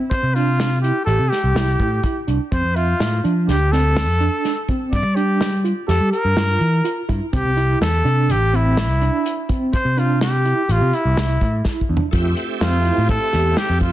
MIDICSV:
0, 0, Header, 1, 6, 480
1, 0, Start_track
1, 0, Tempo, 480769
1, 111, Time_signature, 5, 2, 24, 8
1, 13899, End_track
2, 0, Start_track
2, 0, Title_t, "Trumpet"
2, 0, Program_c, 0, 56
2, 108, Note_on_c, 0, 72, 91
2, 347, Note_on_c, 0, 65, 76
2, 362, Note_off_c, 0, 72, 0
2, 811, Note_off_c, 0, 65, 0
2, 817, Note_on_c, 0, 67, 62
2, 1043, Note_off_c, 0, 67, 0
2, 1049, Note_on_c, 0, 69, 82
2, 1290, Note_on_c, 0, 67, 75
2, 1305, Note_off_c, 0, 69, 0
2, 2262, Note_off_c, 0, 67, 0
2, 2514, Note_on_c, 0, 72, 85
2, 2754, Note_on_c, 0, 65, 75
2, 2769, Note_off_c, 0, 72, 0
2, 3234, Note_off_c, 0, 65, 0
2, 3483, Note_on_c, 0, 67, 81
2, 3714, Note_on_c, 0, 69, 96
2, 3729, Note_off_c, 0, 67, 0
2, 4676, Note_off_c, 0, 69, 0
2, 4907, Note_on_c, 0, 74, 89
2, 5148, Note_on_c, 0, 67, 76
2, 5163, Note_off_c, 0, 74, 0
2, 5633, Note_off_c, 0, 67, 0
2, 5869, Note_on_c, 0, 69, 84
2, 6097, Note_off_c, 0, 69, 0
2, 6113, Note_on_c, 0, 70, 103
2, 7037, Note_off_c, 0, 70, 0
2, 7321, Note_on_c, 0, 67, 87
2, 7767, Note_off_c, 0, 67, 0
2, 7806, Note_on_c, 0, 69, 89
2, 8300, Note_on_c, 0, 67, 90
2, 8315, Note_off_c, 0, 69, 0
2, 8543, Note_on_c, 0, 64, 75
2, 8558, Note_off_c, 0, 67, 0
2, 9491, Note_off_c, 0, 64, 0
2, 9726, Note_on_c, 0, 72, 88
2, 9973, Note_on_c, 0, 65, 74
2, 9987, Note_off_c, 0, 72, 0
2, 10202, Note_off_c, 0, 65, 0
2, 10208, Note_on_c, 0, 67, 76
2, 10696, Note_on_c, 0, 65, 73
2, 10711, Note_off_c, 0, 67, 0
2, 10926, Note_on_c, 0, 64, 73
2, 10941, Note_off_c, 0, 65, 0
2, 11640, Note_off_c, 0, 64, 0
2, 12597, Note_on_c, 0, 65, 79
2, 13040, Note_off_c, 0, 65, 0
2, 13080, Note_on_c, 0, 69, 97
2, 13556, Note_on_c, 0, 67, 85
2, 13571, Note_off_c, 0, 69, 0
2, 13783, Note_off_c, 0, 67, 0
2, 13789, Note_on_c, 0, 65, 69
2, 13899, Note_off_c, 0, 65, 0
2, 13899, End_track
3, 0, Start_track
3, 0, Title_t, "Tine electric piano"
3, 0, Program_c, 1, 4
3, 0, Note_on_c, 1, 60, 61
3, 180, Note_off_c, 1, 60, 0
3, 353, Note_on_c, 1, 62, 67
3, 665, Note_off_c, 1, 62, 0
3, 832, Note_on_c, 1, 64, 62
3, 988, Note_off_c, 1, 64, 0
3, 1067, Note_on_c, 1, 67, 60
3, 1381, Note_off_c, 1, 67, 0
3, 1548, Note_on_c, 1, 64, 71
3, 1862, Note_off_c, 1, 64, 0
3, 2029, Note_on_c, 1, 64, 61
3, 2187, Note_off_c, 1, 64, 0
3, 2269, Note_on_c, 1, 62, 59
3, 2427, Note_off_c, 1, 62, 0
3, 2513, Note_on_c, 1, 60, 68
3, 2669, Note_off_c, 1, 60, 0
3, 2752, Note_on_c, 1, 76, 63
3, 3065, Note_off_c, 1, 76, 0
3, 3236, Note_on_c, 1, 62, 66
3, 3548, Note_off_c, 1, 62, 0
3, 3718, Note_on_c, 1, 60, 57
3, 4030, Note_off_c, 1, 60, 0
3, 4198, Note_on_c, 1, 62, 62
3, 4510, Note_off_c, 1, 62, 0
3, 4682, Note_on_c, 1, 60, 61
3, 4993, Note_off_c, 1, 60, 0
3, 5156, Note_on_c, 1, 62, 66
3, 5469, Note_off_c, 1, 62, 0
3, 5635, Note_on_c, 1, 65, 65
3, 5792, Note_off_c, 1, 65, 0
3, 5870, Note_on_c, 1, 67, 65
3, 6186, Note_off_c, 1, 67, 0
3, 6356, Note_on_c, 1, 65, 65
3, 6670, Note_off_c, 1, 65, 0
3, 6833, Note_on_c, 1, 65, 69
3, 6992, Note_off_c, 1, 65, 0
3, 7076, Note_on_c, 1, 64, 66
3, 7233, Note_off_c, 1, 64, 0
3, 7317, Note_on_c, 1, 60, 75
3, 7474, Note_off_c, 1, 60, 0
3, 7556, Note_on_c, 1, 64, 67
3, 7870, Note_off_c, 1, 64, 0
3, 8035, Note_on_c, 1, 62, 68
3, 8349, Note_off_c, 1, 62, 0
3, 8518, Note_on_c, 1, 60, 64
3, 8832, Note_off_c, 1, 60, 0
3, 9003, Note_on_c, 1, 62, 64
3, 9314, Note_off_c, 1, 62, 0
3, 9477, Note_on_c, 1, 60, 64
3, 9790, Note_off_c, 1, 60, 0
3, 9953, Note_on_c, 1, 62, 67
3, 10268, Note_off_c, 1, 62, 0
3, 10437, Note_on_c, 1, 64, 65
3, 10593, Note_off_c, 1, 64, 0
3, 10675, Note_on_c, 1, 67, 58
3, 10988, Note_off_c, 1, 67, 0
3, 11150, Note_on_c, 1, 64, 70
3, 11464, Note_off_c, 1, 64, 0
3, 11626, Note_on_c, 1, 64, 63
3, 11785, Note_off_c, 1, 64, 0
3, 11868, Note_on_c, 1, 62, 61
3, 12026, Note_off_c, 1, 62, 0
3, 12107, Note_on_c, 1, 65, 69
3, 12421, Note_off_c, 1, 65, 0
3, 12590, Note_on_c, 1, 60, 68
3, 12747, Note_off_c, 1, 60, 0
3, 12833, Note_on_c, 1, 64, 70
3, 13144, Note_off_c, 1, 64, 0
3, 13307, Note_on_c, 1, 67, 65
3, 13619, Note_off_c, 1, 67, 0
3, 13783, Note_on_c, 1, 65, 69
3, 13899, Note_off_c, 1, 65, 0
3, 13899, End_track
4, 0, Start_track
4, 0, Title_t, "Tonewheel organ"
4, 0, Program_c, 2, 16
4, 12093, Note_on_c, 2, 57, 65
4, 12105, Note_on_c, 2, 60, 58
4, 12114, Note_on_c, 2, 76, 58
4, 12125, Note_on_c, 2, 67, 72
4, 13899, Note_off_c, 2, 57, 0
4, 13899, Note_off_c, 2, 60, 0
4, 13899, Note_off_c, 2, 67, 0
4, 13899, Note_off_c, 2, 76, 0
4, 13899, End_track
5, 0, Start_track
5, 0, Title_t, "Picked electric bass"
5, 0, Program_c, 3, 34
5, 229, Note_on_c, 3, 48, 66
5, 901, Note_off_c, 3, 48, 0
5, 1067, Note_on_c, 3, 33, 77
5, 1165, Note_off_c, 3, 33, 0
5, 1189, Note_on_c, 3, 48, 71
5, 1286, Note_off_c, 3, 48, 0
5, 1435, Note_on_c, 3, 36, 69
5, 1530, Note_off_c, 3, 36, 0
5, 1553, Note_on_c, 3, 36, 71
5, 1744, Note_off_c, 3, 36, 0
5, 1796, Note_on_c, 3, 45, 76
5, 1987, Note_off_c, 3, 45, 0
5, 2275, Note_on_c, 3, 36, 68
5, 2370, Note_off_c, 3, 36, 0
5, 2516, Note_on_c, 3, 41, 80
5, 2611, Note_off_c, 3, 41, 0
5, 2634, Note_on_c, 3, 41, 67
5, 2922, Note_off_c, 3, 41, 0
5, 2997, Note_on_c, 3, 45, 75
5, 3188, Note_off_c, 3, 45, 0
5, 3241, Note_on_c, 3, 53, 75
5, 3475, Note_on_c, 3, 38, 73
5, 3490, Note_off_c, 3, 53, 0
5, 4074, Note_off_c, 3, 38, 0
5, 4074, Note_on_c, 3, 41, 81
5, 4266, Note_off_c, 3, 41, 0
5, 4918, Note_on_c, 3, 43, 85
5, 5014, Note_off_c, 3, 43, 0
5, 5036, Note_on_c, 3, 55, 66
5, 5709, Note_off_c, 3, 55, 0
5, 5877, Note_on_c, 3, 41, 72
5, 5973, Note_off_c, 3, 41, 0
5, 5997, Note_on_c, 3, 55, 75
5, 6093, Note_off_c, 3, 55, 0
5, 6237, Note_on_c, 3, 43, 70
5, 6334, Note_off_c, 3, 43, 0
5, 6352, Note_on_c, 3, 43, 75
5, 6547, Note_off_c, 3, 43, 0
5, 6598, Note_on_c, 3, 52, 77
5, 6790, Note_off_c, 3, 52, 0
5, 7081, Note_on_c, 3, 43, 68
5, 7176, Note_off_c, 3, 43, 0
5, 7323, Note_on_c, 3, 36, 76
5, 7418, Note_off_c, 3, 36, 0
5, 7439, Note_on_c, 3, 36, 67
5, 7727, Note_off_c, 3, 36, 0
5, 7797, Note_on_c, 3, 40, 76
5, 7990, Note_off_c, 3, 40, 0
5, 8033, Note_on_c, 3, 48, 86
5, 8274, Note_on_c, 3, 33, 78
5, 8289, Note_off_c, 3, 48, 0
5, 8873, Note_off_c, 3, 33, 0
5, 8873, Note_on_c, 3, 36, 78
5, 9068, Note_off_c, 3, 36, 0
5, 9833, Note_on_c, 3, 48, 71
5, 10506, Note_off_c, 3, 48, 0
5, 10673, Note_on_c, 3, 33, 75
5, 10771, Note_off_c, 3, 33, 0
5, 10794, Note_on_c, 3, 48, 73
5, 10891, Note_off_c, 3, 48, 0
5, 11034, Note_on_c, 3, 36, 68
5, 11131, Note_off_c, 3, 36, 0
5, 11154, Note_on_c, 3, 36, 70
5, 11347, Note_off_c, 3, 36, 0
5, 11396, Note_on_c, 3, 45, 71
5, 11588, Note_off_c, 3, 45, 0
5, 11874, Note_on_c, 3, 40, 71
5, 11970, Note_off_c, 3, 40, 0
5, 12112, Note_on_c, 3, 41, 83
5, 12304, Note_off_c, 3, 41, 0
5, 12591, Note_on_c, 3, 41, 76
5, 12878, Note_off_c, 3, 41, 0
5, 12957, Note_on_c, 3, 45, 84
5, 13146, Note_off_c, 3, 45, 0
5, 13316, Note_on_c, 3, 40, 83
5, 13505, Note_off_c, 3, 40, 0
5, 13674, Note_on_c, 3, 41, 71
5, 13899, Note_off_c, 3, 41, 0
5, 13899, End_track
6, 0, Start_track
6, 0, Title_t, "Drums"
6, 112, Note_on_c, 9, 36, 93
6, 117, Note_on_c, 9, 42, 74
6, 212, Note_off_c, 9, 36, 0
6, 217, Note_off_c, 9, 42, 0
6, 359, Note_on_c, 9, 42, 54
6, 459, Note_off_c, 9, 42, 0
6, 597, Note_on_c, 9, 38, 82
6, 597, Note_on_c, 9, 42, 69
6, 696, Note_off_c, 9, 38, 0
6, 696, Note_off_c, 9, 42, 0
6, 840, Note_on_c, 9, 42, 52
6, 939, Note_off_c, 9, 42, 0
6, 1076, Note_on_c, 9, 42, 68
6, 1176, Note_off_c, 9, 42, 0
6, 1322, Note_on_c, 9, 38, 27
6, 1322, Note_on_c, 9, 42, 53
6, 1422, Note_off_c, 9, 38, 0
6, 1422, Note_off_c, 9, 42, 0
6, 1559, Note_on_c, 9, 38, 82
6, 1559, Note_on_c, 9, 42, 65
6, 1658, Note_off_c, 9, 38, 0
6, 1658, Note_off_c, 9, 42, 0
6, 1794, Note_on_c, 9, 36, 60
6, 1796, Note_on_c, 9, 42, 46
6, 1893, Note_off_c, 9, 36, 0
6, 1896, Note_off_c, 9, 42, 0
6, 2031, Note_on_c, 9, 42, 64
6, 2033, Note_on_c, 9, 36, 86
6, 2131, Note_off_c, 9, 42, 0
6, 2133, Note_off_c, 9, 36, 0
6, 2275, Note_on_c, 9, 42, 50
6, 2375, Note_off_c, 9, 42, 0
6, 2515, Note_on_c, 9, 36, 90
6, 2515, Note_on_c, 9, 42, 61
6, 2615, Note_off_c, 9, 36, 0
6, 2615, Note_off_c, 9, 42, 0
6, 2757, Note_on_c, 9, 42, 49
6, 2857, Note_off_c, 9, 42, 0
6, 2998, Note_on_c, 9, 38, 87
6, 2998, Note_on_c, 9, 42, 60
6, 3098, Note_off_c, 9, 38, 0
6, 3098, Note_off_c, 9, 42, 0
6, 3242, Note_on_c, 9, 42, 48
6, 3342, Note_off_c, 9, 42, 0
6, 3483, Note_on_c, 9, 38, 28
6, 3483, Note_on_c, 9, 42, 62
6, 3583, Note_off_c, 9, 38, 0
6, 3583, Note_off_c, 9, 42, 0
6, 3725, Note_on_c, 9, 38, 27
6, 3725, Note_on_c, 9, 42, 53
6, 3825, Note_off_c, 9, 38, 0
6, 3825, Note_off_c, 9, 42, 0
6, 3959, Note_on_c, 9, 38, 83
6, 3959, Note_on_c, 9, 42, 61
6, 4059, Note_off_c, 9, 38, 0
6, 4059, Note_off_c, 9, 42, 0
6, 4200, Note_on_c, 9, 42, 52
6, 4300, Note_off_c, 9, 42, 0
6, 4442, Note_on_c, 9, 38, 27
6, 4442, Note_on_c, 9, 42, 65
6, 4542, Note_off_c, 9, 38, 0
6, 4542, Note_off_c, 9, 42, 0
6, 4677, Note_on_c, 9, 42, 52
6, 4679, Note_on_c, 9, 36, 60
6, 4777, Note_off_c, 9, 42, 0
6, 4778, Note_off_c, 9, 36, 0
6, 4919, Note_on_c, 9, 36, 97
6, 4919, Note_on_c, 9, 42, 68
6, 5019, Note_off_c, 9, 36, 0
6, 5019, Note_off_c, 9, 42, 0
6, 5159, Note_on_c, 9, 42, 53
6, 5259, Note_off_c, 9, 42, 0
6, 5399, Note_on_c, 9, 38, 85
6, 5399, Note_on_c, 9, 42, 66
6, 5498, Note_off_c, 9, 38, 0
6, 5498, Note_off_c, 9, 42, 0
6, 5642, Note_on_c, 9, 42, 51
6, 5742, Note_off_c, 9, 42, 0
6, 5881, Note_on_c, 9, 38, 29
6, 5881, Note_on_c, 9, 42, 64
6, 5981, Note_off_c, 9, 38, 0
6, 5981, Note_off_c, 9, 42, 0
6, 6120, Note_on_c, 9, 42, 52
6, 6220, Note_off_c, 9, 42, 0
6, 6357, Note_on_c, 9, 38, 82
6, 6357, Note_on_c, 9, 42, 64
6, 6457, Note_off_c, 9, 38, 0
6, 6457, Note_off_c, 9, 42, 0
6, 6597, Note_on_c, 9, 42, 47
6, 6697, Note_off_c, 9, 42, 0
6, 6840, Note_on_c, 9, 42, 67
6, 6940, Note_off_c, 9, 42, 0
6, 7080, Note_on_c, 9, 36, 70
6, 7084, Note_on_c, 9, 42, 51
6, 7180, Note_off_c, 9, 36, 0
6, 7183, Note_off_c, 9, 42, 0
6, 7321, Note_on_c, 9, 36, 96
6, 7323, Note_on_c, 9, 42, 68
6, 7420, Note_off_c, 9, 36, 0
6, 7423, Note_off_c, 9, 42, 0
6, 7562, Note_on_c, 9, 42, 46
6, 7662, Note_off_c, 9, 42, 0
6, 7805, Note_on_c, 9, 38, 82
6, 7805, Note_on_c, 9, 42, 60
6, 7905, Note_off_c, 9, 38, 0
6, 7905, Note_off_c, 9, 42, 0
6, 8046, Note_on_c, 9, 42, 50
6, 8146, Note_off_c, 9, 42, 0
6, 8284, Note_on_c, 9, 42, 70
6, 8384, Note_off_c, 9, 42, 0
6, 8526, Note_on_c, 9, 42, 55
6, 8626, Note_off_c, 9, 42, 0
6, 8760, Note_on_c, 9, 38, 80
6, 8760, Note_on_c, 9, 42, 62
6, 8859, Note_off_c, 9, 38, 0
6, 8859, Note_off_c, 9, 42, 0
6, 9001, Note_on_c, 9, 42, 50
6, 9101, Note_off_c, 9, 42, 0
6, 9243, Note_on_c, 9, 42, 68
6, 9342, Note_off_c, 9, 42, 0
6, 9476, Note_on_c, 9, 42, 56
6, 9480, Note_on_c, 9, 36, 63
6, 9576, Note_off_c, 9, 42, 0
6, 9579, Note_off_c, 9, 36, 0
6, 9717, Note_on_c, 9, 42, 75
6, 9719, Note_on_c, 9, 36, 99
6, 9817, Note_off_c, 9, 42, 0
6, 9819, Note_off_c, 9, 36, 0
6, 9961, Note_on_c, 9, 42, 52
6, 10060, Note_off_c, 9, 42, 0
6, 10197, Note_on_c, 9, 38, 86
6, 10197, Note_on_c, 9, 42, 62
6, 10297, Note_off_c, 9, 38, 0
6, 10297, Note_off_c, 9, 42, 0
6, 10436, Note_on_c, 9, 42, 52
6, 10536, Note_off_c, 9, 42, 0
6, 10676, Note_on_c, 9, 42, 66
6, 10776, Note_off_c, 9, 42, 0
6, 10916, Note_on_c, 9, 42, 51
6, 11016, Note_off_c, 9, 42, 0
6, 11156, Note_on_c, 9, 38, 86
6, 11156, Note_on_c, 9, 42, 60
6, 11256, Note_off_c, 9, 38, 0
6, 11256, Note_off_c, 9, 42, 0
6, 11394, Note_on_c, 9, 42, 47
6, 11395, Note_on_c, 9, 36, 61
6, 11494, Note_off_c, 9, 42, 0
6, 11495, Note_off_c, 9, 36, 0
6, 11628, Note_on_c, 9, 38, 50
6, 11634, Note_on_c, 9, 36, 86
6, 11728, Note_off_c, 9, 38, 0
6, 11734, Note_off_c, 9, 36, 0
6, 11793, Note_on_c, 9, 36, 55
6, 11893, Note_off_c, 9, 36, 0
6, 11949, Note_on_c, 9, 43, 75
6, 12049, Note_off_c, 9, 43, 0
6, 12108, Note_on_c, 9, 42, 76
6, 12112, Note_on_c, 9, 36, 90
6, 12207, Note_off_c, 9, 42, 0
6, 12212, Note_off_c, 9, 36, 0
6, 12348, Note_on_c, 9, 42, 57
6, 12448, Note_off_c, 9, 42, 0
6, 12592, Note_on_c, 9, 38, 95
6, 12592, Note_on_c, 9, 42, 74
6, 12692, Note_off_c, 9, 38, 0
6, 12692, Note_off_c, 9, 42, 0
6, 12830, Note_on_c, 9, 42, 56
6, 12929, Note_off_c, 9, 42, 0
6, 13069, Note_on_c, 9, 42, 71
6, 13071, Note_on_c, 9, 36, 86
6, 13169, Note_off_c, 9, 42, 0
6, 13171, Note_off_c, 9, 36, 0
6, 13308, Note_on_c, 9, 38, 32
6, 13308, Note_on_c, 9, 42, 56
6, 13408, Note_off_c, 9, 38, 0
6, 13408, Note_off_c, 9, 42, 0
6, 13546, Note_on_c, 9, 38, 88
6, 13546, Note_on_c, 9, 42, 68
6, 13646, Note_off_c, 9, 38, 0
6, 13646, Note_off_c, 9, 42, 0
6, 13784, Note_on_c, 9, 42, 52
6, 13788, Note_on_c, 9, 36, 64
6, 13884, Note_off_c, 9, 42, 0
6, 13888, Note_off_c, 9, 36, 0
6, 13899, End_track
0, 0, End_of_file